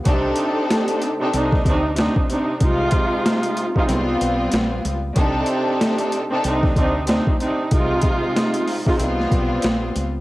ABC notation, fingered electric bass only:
X:1
M:4/4
L:1/16
Q:"Swing 16ths" 1/4=94
K:Cm
V:1 name="Fingered electric bass" clef=bass
C,,2 z6 C,,2 D,,3 z3 | C,,2 z6 C,,2 =B,,,2 _B,,,2 _D,,2 | C,,2 z6 C,,2 D,,3 z3 | C,,2 z6 C,,2 =B,,,2 _B,,,2 _D,,2 |]